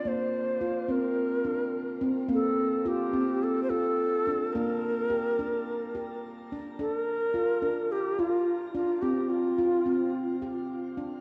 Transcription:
0.05 handpan A#3, native american-style wooden flute C5
0.61 handpan F4
0.88 handpan C4, native american-style wooden flute A#4
1.45 handpan D4
2.01 handpan C4
2.28 handpan A#3 C4
2.34 native american-style wooden flute A4
2.85 handpan F4, native american-style wooden flute G4
3.13 handpan C4
3.43 native american-style wooden flute A4
3.63 native american-style wooden flute C5
3.70 handpan F4, native american-style wooden flute A4
4.27 handpan D4
4.53 handpan A#3 D4, native american-style wooden flute A#4
5.10 handpan G4
5.39 handpan D4
5.95 handpan G4
6.52 handpan D4
6.79 handpan D4, native american-style wooden flute A4
6.92 native american-style wooden flute A#4
7.34 handpan F4
7.62 handpan D4
7.92 native american-style wooden flute G4
8.19 handpan F4, native american-style wooden flute F4
8.75 handpan D4, native american-style wooden flute F4
9.02 handpan C4, native american-style wooden flute G4
9.29 native american-style wooden flute F4
9.58 handpan F4
9.86 handpan C4
10.42 handpan G4
10.97 handpan D4

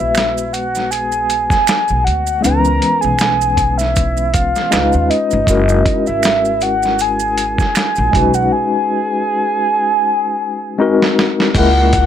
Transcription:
Already playing: tine electric piano G#3 B3 F#4 B4
0.00 upright bass A#1, soft synth lead E5
0.15 finger snap, snare, closed hi-hat, maracas
0.38 maracas
0.53 soft synth lead F#5, closed hi-hat, maracas
0.75 snare, maracas
0.91 soft synth lead G#5, closed hi-hat, maracas
1.12 maracas
1.30 closed hi-hat, maracas
1.50 soft synth lead G#5, kick, snare, maracas
1.67 finger snap, snare, closed hi-hat, maracas
1.88 upright bass B1, maracas
2.04 upright bass D2, soft synth lead F#5, closed hi-hat
2.27 maracas
2.41 tine electric piano G#3 B3 C#4, soft synth lead A#5, closed hi-hat, maracas
2.45 upright bass C#2, tine electric piano D#4 B4
2.52 tine electric piano E3
2.65 maracas
2.82 closed hi-hat
3.01 upright bass B1, soft synth lead G#5, maracas
3.19 finger snap, snare, closed hi-hat, maracas
3.41 maracas
3.57 kick, closed hi-hat, maracas
3.77 soft synth lead E5, snare, maracas
3.96 kick, closed hi-hat, maracas
4.17 maracas
4.34 soft synth lead F5, kick, closed hi-hat, maracas
4.56 snare, maracas
4.70 upright bass C#2, tine electric piano G#3 C#4 D#4 F4 B4, finger snap, snare, closed hi-hat, maracas
4.93 upright bass D#2, maracas
5.10 soft synth lead D#5, closed hi-hat
5.31 upright bass G1, maracas
5.45 upright bass F#1, tine electric piano G#3 C#4 E4, kick, closed hi-hat, maracas
5.49 tine electric piano F#4 A#4
5.69 maracas
5.86 kick, closed hi-hat
6.07 upright bass G#1, soft synth lead E5, maracas
6.23 finger snap, snare, closed hi-hat, maracas
6.45 maracas
6.61 soft synth lead F#5, closed hi-hat, maracas
6.83 snare, maracas
6.99 soft synth lead G#5, closed hi-hat, maracas
7.20 maracas
7.38 closed hi-hat, maracas
7.58 soft synth lead G#5, kick, snare, maracas
7.75 finger snap, snare, closed hi-hat, maracas
7.96 upright bass A#1, maracas
8.11 upright bass B1, tine electric piano G#3 C#4 D#4, kick, closed hi-hat
8.16 tine electric piano F#4 B4
8.34 soft synth lead F#5, maracas
8.52 soft synth lead G#5
10.78 tine electric piano G#3 C4 D#4 F#4 A#4
11.02 snare
11.19 snare
11.40 snare
11.54 upright bass C#2, tine electric piano G#3 A#3 C#4, soft synth lead F#5, kick, closed hi-hat, crash
11.58 tine electric piano E4 A#4
11.93 kick, closed hi-hat

